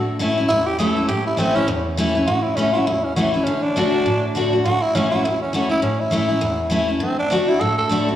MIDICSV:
0, 0, Header, 1, 3, 480
1, 0, Start_track
1, 0, Key_signature, 3, "major"
1, 0, Tempo, 296589
1, 1762, Time_signature, 4, 2, 24, 8
1, 13201, End_track
2, 0, Start_track
2, 0, Title_t, "Tenor saxophone"
2, 0, Program_c, 0, 66
2, 788, Note_on_c, 0, 64, 125
2, 1076, Note_on_c, 0, 67, 104
2, 1100, Note_off_c, 0, 64, 0
2, 1271, Note_off_c, 0, 67, 0
2, 1280, Note_on_c, 0, 69, 86
2, 1737, Note_off_c, 0, 69, 0
2, 1747, Note_on_c, 0, 67, 100
2, 2028, Note_off_c, 0, 67, 0
2, 2050, Note_on_c, 0, 64, 97
2, 2243, Note_on_c, 0, 60, 103
2, 2268, Note_off_c, 0, 64, 0
2, 2508, Note_on_c, 0, 61, 106
2, 2532, Note_off_c, 0, 60, 0
2, 2706, Note_off_c, 0, 61, 0
2, 3660, Note_on_c, 0, 66, 99
2, 3930, Note_on_c, 0, 64, 86
2, 3955, Note_off_c, 0, 66, 0
2, 4139, Note_on_c, 0, 61, 93
2, 4163, Note_off_c, 0, 64, 0
2, 4403, Note_off_c, 0, 61, 0
2, 4413, Note_on_c, 0, 66, 99
2, 4627, Note_on_c, 0, 64, 90
2, 4651, Note_off_c, 0, 66, 0
2, 4919, Note_on_c, 0, 61, 83
2, 4943, Note_off_c, 0, 64, 0
2, 5100, Note_off_c, 0, 61, 0
2, 5110, Note_on_c, 0, 66, 75
2, 5376, Note_on_c, 0, 64, 83
2, 5400, Note_off_c, 0, 66, 0
2, 5560, Note_on_c, 0, 61, 85
2, 5584, Note_off_c, 0, 64, 0
2, 5868, Note_on_c, 0, 62, 106
2, 5892, Note_off_c, 0, 61, 0
2, 7274, Note_off_c, 0, 62, 0
2, 7505, Note_on_c, 0, 66, 111
2, 7799, Note_on_c, 0, 64, 103
2, 7824, Note_off_c, 0, 66, 0
2, 8011, Note_on_c, 0, 61, 96
2, 8036, Note_off_c, 0, 64, 0
2, 8261, Note_off_c, 0, 61, 0
2, 8271, Note_on_c, 0, 66, 99
2, 8483, Note_on_c, 0, 64, 88
2, 8507, Note_off_c, 0, 66, 0
2, 8758, Note_off_c, 0, 64, 0
2, 8768, Note_on_c, 0, 61, 84
2, 8958, Note_off_c, 0, 61, 0
2, 8985, Note_on_c, 0, 66, 80
2, 9226, Note_off_c, 0, 66, 0
2, 9235, Note_on_c, 0, 64, 93
2, 9422, Note_off_c, 0, 64, 0
2, 9431, Note_on_c, 0, 61, 88
2, 9718, Note_on_c, 0, 64, 97
2, 9742, Note_off_c, 0, 61, 0
2, 11119, Note_off_c, 0, 64, 0
2, 11359, Note_on_c, 0, 60, 91
2, 11630, Note_off_c, 0, 60, 0
2, 11640, Note_on_c, 0, 62, 96
2, 12111, Note_on_c, 0, 64, 104
2, 12135, Note_off_c, 0, 62, 0
2, 12309, Note_on_c, 0, 69, 105
2, 12333, Note_off_c, 0, 64, 0
2, 12582, Note_off_c, 0, 69, 0
2, 12591, Note_on_c, 0, 69, 87
2, 13064, Note_off_c, 0, 69, 0
2, 13201, End_track
3, 0, Start_track
3, 0, Title_t, "Steel-string acoustic guitar"
3, 0, Program_c, 1, 25
3, 0, Note_on_c, 1, 45, 84
3, 313, Note_on_c, 1, 52, 90
3, 324, Note_on_c, 1, 57, 98
3, 340, Note_on_c, 1, 61, 98
3, 355, Note_on_c, 1, 64, 92
3, 588, Note_off_c, 1, 64, 0
3, 590, Note_off_c, 1, 52, 0
3, 596, Note_off_c, 1, 57, 0
3, 603, Note_off_c, 1, 61, 0
3, 608, Note_on_c, 1, 64, 60
3, 643, Note_on_c, 1, 61, 51
3, 769, Note_off_c, 1, 45, 0
3, 796, Note_off_c, 1, 64, 0
3, 812, Note_on_c, 1, 40, 95
3, 813, Note_off_c, 1, 61, 0
3, 1271, Note_on_c, 1, 52, 92
3, 1289, Note_on_c, 1, 57, 97
3, 1299, Note_on_c, 1, 61, 89
3, 1305, Note_on_c, 1, 64, 103
3, 1539, Note_off_c, 1, 64, 0
3, 1548, Note_off_c, 1, 52, 0
3, 1557, Note_off_c, 1, 57, 0
3, 1559, Note_on_c, 1, 64, 61
3, 1562, Note_off_c, 1, 61, 0
3, 1587, Note_on_c, 1, 61, 50
3, 1727, Note_off_c, 1, 40, 0
3, 1751, Note_off_c, 1, 64, 0
3, 1757, Note_on_c, 1, 45, 88
3, 1765, Note_off_c, 1, 61, 0
3, 2219, Note_on_c, 1, 52, 82
3, 2237, Note_on_c, 1, 57, 84
3, 2253, Note_on_c, 1, 61, 92
3, 2263, Note_on_c, 1, 64, 101
3, 2496, Note_off_c, 1, 64, 0
3, 2502, Note_off_c, 1, 52, 0
3, 2511, Note_off_c, 1, 57, 0
3, 2516, Note_on_c, 1, 64, 66
3, 2519, Note_off_c, 1, 61, 0
3, 2555, Note_on_c, 1, 61, 50
3, 2679, Note_off_c, 1, 45, 0
3, 2709, Note_off_c, 1, 64, 0
3, 2715, Note_on_c, 1, 40, 93
3, 2728, Note_off_c, 1, 61, 0
3, 3195, Note_on_c, 1, 52, 96
3, 3209, Note_on_c, 1, 57, 96
3, 3218, Note_on_c, 1, 61, 97
3, 3235, Note_on_c, 1, 64, 108
3, 3461, Note_off_c, 1, 64, 0
3, 3469, Note_off_c, 1, 52, 0
3, 3476, Note_off_c, 1, 57, 0
3, 3481, Note_off_c, 1, 61, 0
3, 3481, Note_on_c, 1, 64, 61
3, 3510, Note_on_c, 1, 61, 54
3, 3638, Note_off_c, 1, 40, 0
3, 3671, Note_off_c, 1, 64, 0
3, 3683, Note_on_c, 1, 45, 89
3, 3685, Note_off_c, 1, 61, 0
3, 4154, Note_on_c, 1, 52, 94
3, 4167, Note_on_c, 1, 57, 85
3, 4179, Note_on_c, 1, 61, 99
3, 4191, Note_on_c, 1, 64, 97
3, 4427, Note_off_c, 1, 64, 0
3, 4429, Note_off_c, 1, 52, 0
3, 4435, Note_off_c, 1, 57, 0
3, 4442, Note_off_c, 1, 61, 0
3, 4446, Note_on_c, 1, 64, 61
3, 4476, Note_on_c, 1, 61, 47
3, 4602, Note_off_c, 1, 45, 0
3, 4634, Note_off_c, 1, 64, 0
3, 4645, Note_on_c, 1, 40, 92
3, 4648, Note_off_c, 1, 61, 0
3, 5119, Note_on_c, 1, 52, 92
3, 5132, Note_on_c, 1, 57, 98
3, 5146, Note_on_c, 1, 61, 99
3, 5159, Note_on_c, 1, 64, 90
3, 5384, Note_off_c, 1, 64, 0
3, 5392, Note_off_c, 1, 52, 0
3, 5398, Note_off_c, 1, 57, 0
3, 5403, Note_on_c, 1, 64, 64
3, 5405, Note_off_c, 1, 61, 0
3, 5435, Note_on_c, 1, 61, 49
3, 5564, Note_off_c, 1, 40, 0
3, 5592, Note_off_c, 1, 64, 0
3, 5608, Note_off_c, 1, 61, 0
3, 5609, Note_on_c, 1, 50, 94
3, 6064, Note_off_c, 1, 50, 0
3, 6083, Note_on_c, 1, 50, 85
3, 6096, Note_on_c, 1, 57, 89
3, 6107, Note_on_c, 1, 62, 99
3, 6114, Note_on_c, 1, 66, 90
3, 6543, Note_off_c, 1, 50, 0
3, 6549, Note_off_c, 1, 57, 0
3, 6555, Note_off_c, 1, 62, 0
3, 6558, Note_off_c, 1, 66, 0
3, 6567, Note_on_c, 1, 45, 91
3, 7038, Note_on_c, 1, 50, 89
3, 7054, Note_on_c, 1, 57, 89
3, 7067, Note_on_c, 1, 62, 104
3, 7072, Note_on_c, 1, 66, 101
3, 7309, Note_off_c, 1, 66, 0
3, 7312, Note_off_c, 1, 50, 0
3, 7320, Note_off_c, 1, 57, 0
3, 7326, Note_off_c, 1, 62, 0
3, 7328, Note_on_c, 1, 66, 58
3, 7373, Note_on_c, 1, 62, 45
3, 7486, Note_off_c, 1, 45, 0
3, 7516, Note_off_c, 1, 66, 0
3, 7534, Note_on_c, 1, 45, 89
3, 7538, Note_off_c, 1, 62, 0
3, 8008, Note_on_c, 1, 52, 92
3, 8022, Note_on_c, 1, 57, 90
3, 8029, Note_on_c, 1, 61, 96
3, 8045, Note_on_c, 1, 64, 101
3, 8268, Note_off_c, 1, 64, 0
3, 8277, Note_off_c, 1, 52, 0
3, 8284, Note_off_c, 1, 57, 0
3, 8288, Note_off_c, 1, 61, 0
3, 8288, Note_on_c, 1, 64, 63
3, 8327, Note_on_c, 1, 61, 44
3, 8450, Note_off_c, 1, 45, 0
3, 8476, Note_off_c, 1, 64, 0
3, 8496, Note_off_c, 1, 61, 0
3, 8499, Note_on_c, 1, 40, 100
3, 8949, Note_on_c, 1, 52, 86
3, 8969, Note_on_c, 1, 57, 94
3, 8980, Note_on_c, 1, 61, 101
3, 8982, Note_on_c, 1, 64, 90
3, 9195, Note_off_c, 1, 64, 0
3, 9214, Note_on_c, 1, 64, 58
3, 9228, Note_off_c, 1, 52, 0
3, 9238, Note_off_c, 1, 57, 0
3, 9238, Note_off_c, 1, 61, 0
3, 9258, Note_on_c, 1, 61, 42
3, 9412, Note_off_c, 1, 40, 0
3, 9419, Note_off_c, 1, 64, 0
3, 9422, Note_on_c, 1, 45, 80
3, 9441, Note_off_c, 1, 61, 0
3, 9886, Note_on_c, 1, 52, 84
3, 9907, Note_on_c, 1, 57, 87
3, 9921, Note_on_c, 1, 61, 90
3, 9925, Note_on_c, 1, 64, 88
3, 10154, Note_off_c, 1, 64, 0
3, 10174, Note_on_c, 1, 64, 56
3, 10177, Note_off_c, 1, 52, 0
3, 10187, Note_off_c, 1, 57, 0
3, 10194, Note_off_c, 1, 61, 0
3, 10213, Note_on_c, 1, 61, 43
3, 10353, Note_off_c, 1, 45, 0
3, 10377, Note_on_c, 1, 40, 99
3, 10379, Note_off_c, 1, 64, 0
3, 10399, Note_off_c, 1, 61, 0
3, 10839, Note_on_c, 1, 52, 90
3, 10861, Note_on_c, 1, 57, 90
3, 10871, Note_on_c, 1, 61, 94
3, 10879, Note_on_c, 1, 64, 97
3, 11121, Note_off_c, 1, 64, 0
3, 11133, Note_off_c, 1, 52, 0
3, 11140, Note_on_c, 1, 64, 57
3, 11144, Note_off_c, 1, 57, 0
3, 11144, Note_off_c, 1, 61, 0
3, 11164, Note_on_c, 1, 61, 47
3, 11311, Note_off_c, 1, 40, 0
3, 11331, Note_on_c, 1, 50, 89
3, 11342, Note_off_c, 1, 64, 0
3, 11354, Note_off_c, 1, 61, 0
3, 11794, Note_off_c, 1, 50, 0
3, 11814, Note_on_c, 1, 50, 88
3, 11834, Note_on_c, 1, 57, 91
3, 11844, Note_on_c, 1, 62, 88
3, 11854, Note_on_c, 1, 66, 102
3, 12087, Note_off_c, 1, 66, 0
3, 12100, Note_off_c, 1, 50, 0
3, 12107, Note_on_c, 1, 66, 57
3, 12110, Note_off_c, 1, 57, 0
3, 12115, Note_off_c, 1, 62, 0
3, 12148, Note_on_c, 1, 62, 50
3, 12305, Note_off_c, 1, 66, 0
3, 12313, Note_on_c, 1, 45, 91
3, 12326, Note_off_c, 1, 62, 0
3, 12775, Note_on_c, 1, 50, 90
3, 12794, Note_on_c, 1, 57, 89
3, 12812, Note_on_c, 1, 62, 109
3, 12821, Note_on_c, 1, 66, 108
3, 13060, Note_off_c, 1, 50, 0
3, 13066, Note_off_c, 1, 66, 0
3, 13070, Note_off_c, 1, 57, 0
3, 13079, Note_off_c, 1, 62, 0
3, 13085, Note_on_c, 1, 66, 68
3, 13118, Note_on_c, 1, 62, 45
3, 13201, Note_off_c, 1, 45, 0
3, 13201, Note_off_c, 1, 62, 0
3, 13201, Note_off_c, 1, 66, 0
3, 13201, End_track
0, 0, End_of_file